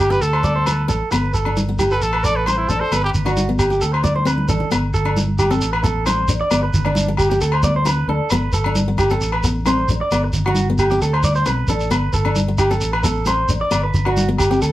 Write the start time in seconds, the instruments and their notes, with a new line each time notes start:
Already playing: fingered electric bass G1
0.00 trumpet G4
0.10 clean electric guitar G4, trumpet B4, muted steel-string acoustic guitar stroke, shekere
0.21 fingered electric bass D2, trumpet A4, clean electric guitar A4, muted conga, shekere
0.33 clean electric guitar C5, low agogo
0.44 steel-string acoustic guitar B3, clean electric guitar D5, high conga, shekere
0.56 clean electric guitar C5
0.66 clean electric guitar B4, muted steel-string acoustic guitar stroke, high conga, low agogo, shekere
0.88 fingered electric bass A1, clean electric guitar A4, muted steel-string acoustic guitar stroke, muted conga, shekere
1.11 fingered electric bass G1, steel-string acoustic guitar B3, clean electric guitar B4, muted conga, low agogo, shekere
1.34 fingered electric bass G1, clean electric guitar A4, muted conga, shekere
1.45 steel-string acoustic guitar D4, low agogo
1.57 high conga, shekere
1.69 steel-string acoustic guitar B3
1.79 clean electric guitar G4, high conga, low agogo, shekere
1.91 clean electric guitar A4, trumpet B4, shekere
2.01 fingered electric bass A1, trumpet A4, muted conga, shekere
2.13 clean electric guitar B4, low agogo
2.24 clean electric guitar A4, trumpet D5, muted steel-string acoustic guitar stroke, shekere
2.36 trumpet B4
2.46 steel-string acoustic guitar C4, clean electric guitar C5, trumpet C5, high conga, low agogo, shekere
2.57 trumpet E4
2.69 fingered electric bass A1, steel-string acoustic guitar D4, trumpet A4, muted conga, shekere
2.80 clean electric guitar A4, trumpet C5
2.92 fingered electric bass G1, steel-string acoustic guitar B3, trumpet B4, muted conga, low agogo, shekere
3.03 trumpet G4, clean electric guitar B4
3.14 fingered electric bass G1, muted conga, low conga, shekere
3.26 steel-string acoustic guitar D4, clean electric guitar F#4, low agogo, shekere
3.37 high conga, shekere
3.49 steel-string acoustic guitar B3
3.59 clean electric guitar G4, low agogo, shekere
3.70 steel-string acoustic guitar C4, clean electric guitar G4, shekere
3.81 fingered electric bass D2, clean electric guitar A4, muted conga, shekere
3.93 clean electric guitar C5, low agogo
4.04 steel-string acoustic guitar B3, clean electric guitar D5, high conga, shekere
4.16 clean electric guitar C5, high conga
4.25 steel-string acoustic guitar C4, clean electric guitar B4, high conga, low agogo, shekere
4.38 high conga
4.49 fingered electric bass A1, steel-string acoustic guitar D4, clean electric guitar A4, low conga, shekere
4.60 low conga
4.71 fingered electric bass G1, steel-string acoustic guitar B3, muted clean electric guitar stroke, muted conga, low agogo, shekere
4.94 fingered electric bass G1, clean electric guitar A4, muted conga, shekere
5.05 steel-string acoustic guitar D4, low agogo
5.17 high conga, shekere
5.39 clean electric guitar G4, high conga, low agogo, shekere
5.51 steel-string acoustic guitar C4, clean electric guitar A4, shekere
5.61 fingered electric bass A1, muted conga, shekere
5.73 clean electric guitar B4, low agogo
5.84 steel-string acoustic guitar B3, clean electric guitar A4, shekere
6.06 steel-string acoustic guitar C4, clean electric guitar C5, high conga, low agogo, shekere
6.28 fingered electric bass A1, steel-string acoustic guitar D4, muted conga, shekere
6.41 clean electric guitar D5
6.51 fingered electric bass G1, steel-string acoustic guitar B3, muted conga, low agogo, shekere
6.63 clean electric guitar B4
6.74 fingered electric bass G1, muted conga, low conga, shekere
6.85 clean electric guitar D4, muted steel-string acoustic guitar stroke, low agogo
6.95 high conga, shekere
7.08 muted steel-string acoustic guitar stroke
7.17 clean electric guitar G4, low agogo, shekere
7.30 steel-string acoustic guitar C4, clean electric guitar G4, shekere
7.40 fingered electric bass D2, clean electric guitar A4, muted conga, shekere
7.52 clean electric guitar C5, low agogo
7.63 steel-string acoustic guitar B3, clean electric guitar D5, high conga, shekere
7.76 clean electric guitar C5
7.85 steel-string acoustic guitar C4, clean electric guitar B4, high conga, low agogo, shekere
8.08 fingered electric bass D2, steel-string acoustic guitar D4, clean electric guitar A4, muted conga
8.30 fingered electric bass G1, steel-string acoustic guitar B3, clean electric guitar B4, muted conga, low agogo, shekere
8.53 fingered electric bass G1, clean electric guitar A4, muted conga, shekere
8.64 steel-string acoustic guitar D4, low agogo
8.75 high conga, shekere
8.88 steel-string acoustic guitar B3
8.98 clean electric guitar G4, high conga, low agogo, shekere
9.10 steel-string acoustic guitar C4, clean electric guitar A4, shekere
9.21 fingered electric bass A1, muted conga, shekere
9.32 clean electric guitar B4, low agogo
9.43 steel-string acoustic guitar B3, muted clean electric guitar stroke, shekere
9.65 steel-string acoustic guitar C4, clean electric guitar C5, high conga, low agogo, shekere
9.88 fingered electric bass A1, steel-string acoustic guitar D4, muted conga, shekere
10.01 clean electric guitar D5
10.11 fingered electric bass G1, steel-string acoustic guitar B3, muted conga, low agogo, shekere
10.24 muted clean electric guitar stroke
10.33 fingered electric bass G1, muted conga, low conga, shekere
10.46 clean electric guitar F#4, muted steel-string acoustic guitar stroke, low agogo
10.55 high conga, shekere
10.70 steel-string acoustic guitar B3
10.78 clean electric guitar G4, low agogo, shekere
10.90 steel-string acoustic guitar C4, clean electric guitar G4, shekere
11.01 fingered electric bass D2, clean electric guitar A4, muted conga, shekere
11.13 clean electric guitar C5, low agogo
11.23 clean electric guitar D5, high conga, shekere
11.35 clean electric guitar C5, shekere
11.46 fingered electric bass B1, steel-string acoustic guitar C4, clean electric guitar B4, high conga, low agogo, shekere
11.68 fingered electric bass A1, steel-string acoustic guitar D4, clean electric guitar A4, muted conga, shekere
11.80 shekere
11.90 fingered electric bass G1, steel-string acoustic guitar B3, clean electric guitar B4, muted conga, low agogo, shekere
12.13 fingered electric bass G1, clean electric guitar A4, muted conga, shekere
12.25 steel-string acoustic guitar D4, low agogo
12.36 high conga, shekere
12.48 muted steel-string acoustic guitar stroke
12.58 clean electric guitar G4, low agogo, shekere
12.71 steel-string acoustic guitar C4, clean electric guitar A4, shekere
12.81 fingered electric bass A1, muted conga, shekere
12.93 clean electric guitar B4, low agogo
13.04 steel-string acoustic guitar B3, clean electric guitar A4, shekere
13.26 steel-string acoustic guitar C4, clean electric guitar C5, high conga, low agogo, shekere
13.49 fingered electric bass A1, steel-string acoustic guitar D4, muted conga, shekere
13.61 clean electric guitar D5
13.71 fingered electric bass G1, steel-string acoustic guitar B3, muted conga, low agogo, shekere
13.83 clean electric guitar B4
13.94 fingered electric bass G1, muted conga, low conga, shekere
14.05 steel-string acoustic guitar D4, clean electric guitar F#4, low agogo
14.17 high conga, shekere
14.29 steel-string acoustic guitar B3
14.38 clean electric guitar G4, low agogo, shekere
14.51 steel-string acoustic guitar C4, clean electric guitar G4, shekere
14.62 fingered electric bass D2, clean electric guitar A4, muted conga, shekere